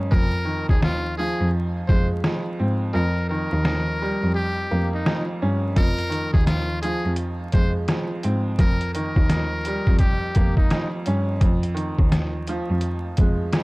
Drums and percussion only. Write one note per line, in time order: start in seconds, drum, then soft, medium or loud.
0.12 kick loud
0.69 kick medium
0.82 cross-stick medium
0.82 snare loud
1.89 kick loud
2.24 cross-stick loud
2.24 snare loud
3.65 cross-stick medium
3.65 snare loud
5.06 cross-stick loud
5.06 snare loud
5.76 kick loud
5.76 closed hi-hat medium
5.98 closed hi-hat medium
6.12 closed hi-hat medium
6.34 kick medium
6.47 cross-stick medium
6.47 snare loud
6.47 closed hi-hat medium
6.83 closed hi-hat medium
7.16 closed hi-hat medium
7.52 kick medium
7.52 closed hi-hat medium
7.88 cross-stick loud
7.88 snare loud
7.88 closed hi-hat medium
8.23 closed hi-hat medium
8.59 kick loud
8.59 closed hi-hat medium
8.81 closed hi-hat medium
8.95 closed hi-hat medium
9.16 kick medium
9.29 cross-stick medium
9.29 snare loud
9.29 closed hi-hat medium
9.65 closed hi-hat medium
9.87 kick medium
9.99 kick medium
9.99 closed hi-hat medium
10.35 kick medium
10.35 closed hi-hat medium
10.57 kick medium
10.70 cross-stick medium
10.70 snare loud
10.70 closed hi-hat medium
11.06 closed hi-hat medium
11.41 kick loud
11.41 closed hi-hat medium
11.63 closed hi-hat medium
11.77 closed hi-hat medium
11.99 kick medium
12.12 cross-stick medium
12.12 snare loud
12.12 closed hi-hat medium
12.47 closed hi-hat medium
12.81 closed hi-hat medium
13.17 kick medium
13.17 closed hi-hat medium
13.53 cross-stick medium
13.53 snare loud
13.53 closed hi-hat medium